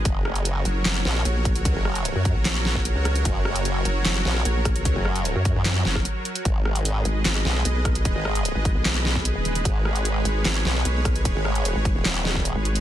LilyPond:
<<
  \new Staff \with { instrumentName = "Supersaw synth" } { \time 4/4 \key gis \minor \tempo 4 = 150 << { cis''1~ | cis''1~ | cis''1~ | cis''1 |
dis''1~ | dis''1 | cis''1~ | cis''1 | } \\ { <fis fis' ais'>1~ | <fis fis' ais'>1~ | <fis fis' ais'>1~ | <fis fis' ais'>1 |
<gis gis' b'>1~ | <gis gis' b'>1~ | <gis gis' b'>1~ | <gis gis' b'>1 | } >> }
  \new Staff \with { instrumentName = "Wobble bass" } { \clef bass \time 4/4 \key gis \minor fis,,4. r4 ais,,8 r4 | r16 fis,,4 r2 r8. | fis,,4. r4 ais,,8 r4 | r16 fis,,4 r8 fis,8. r4. |
gis,,4. r4 b,,8 r4 | r16 gis,,4 r2 r8. | gis,,4. r4 b,,8 r4 | r16 gis,,4 r8 dis,,4. r8. | }
  \new Staff \with { instrumentName = "Wobble bass" } { \clef bass \time 4/4 \key gis \minor r4. fis,,8 fis,,8 r8 ais,,4 | cis,16 r4 fis,8 ais,,4. cis,8. | r4. fis,,8 fis,,8 r8 ais,,4 | cis,16 r4 fis,8 r8. fis,,8 r4 |
r4. gis,,8 gis,,8 r8 b,,4 | dis,,16 r4 gis,,8 b,,4. dis,,8. | r4. gis,,8 gis,,8 r8 b,,4 | dis,,16 r4 gis,,8 r4. gis,,8. | }
  \new DrumStaff \with { instrumentName = "Drums" } \drummode { \time 4/4 <hh bd>8 ss16 hh16 hh8 hh8 <hc hh sn>16 ss16 sn8 hh8 <hh bd>16 hh16 | <hh bd>8 ss16 hh16 hh8 <hh bd>8 <hc hh sn>8 sn16 bd16 hh8 <hh ss>16 hh16 | <hh bd>8 ss16 hh16 hh8 hh8 <hc hh sn>16 ss16 sn8 hh8 <hh bd ss>16 hh16 | <hh bd>8 ss16 hh16 hh8 <hh bd>8 <hc hh sn>8 sn16 <bd ss>16 hh8 hh16 hh16 |
<hh bd>8 ss16 hh16 hh8 hh8 <hc hh sn>16 ss16 sn8 hh8 <hh bd ss>16 hh16 | <hh bd>8 ss16 hh16 hh8 <hh bd>8 <hc hh sn>8 sn16 bd16 hh8 hh16 hh16 | <hh bd>8 ss16 hh16 hh8 hh8 <hc hh sn>16 ss16 sn8 hh8 <hh bd ss>16 hh16 | <hh bd>8 ss16 hh16 hh8 <hh bd>8 <hc hh sn>8 sn16 bd16 hh8 hh16 hh16 | }
>>